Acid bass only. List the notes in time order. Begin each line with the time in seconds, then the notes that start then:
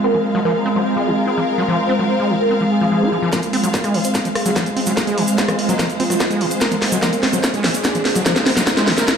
0.04 C4
0.14 F3
0.35 F#3
0.45 F3
0.66 C4
0.76 F#3
0.96 G#3
1.07 D#3
1.27 C4
1.38 F3
1.58 F#3
1.68 F3
1.89 C4
1.99 F#3
2.20 G#3
2.30 D#3
2.51 C4
2.61 F3
2.81 F3
2.92 F3
3.02 F#4
3.12 F3
3.22 F3
3.33 F3
3.53 C4
3.64 F#3
3.84 G#3
3.94 D#3
4.15 C4
4.25 F3
4.46 F#3
4.56 F3
4.77 C4
4.87 F#3
5.07 G#3
5.18 D#3
5.38 C4
5.48 F3
5.69 F#3
5.79 F3
6.00 C4
6.10 F#3
6.31 G#3
6.41 D#3
6.61 C4
6.72 F3
6.92 F#3
7.03 F3
7.23 C4
7.33 F#3
7.54 G#3
7.64 D#3
7.85 C4
7.95 F3
8.16 F#3
8.26 F3
8.46 C4
8.57 F#3
8.77 G#3
8.88 D#3
9.08 C4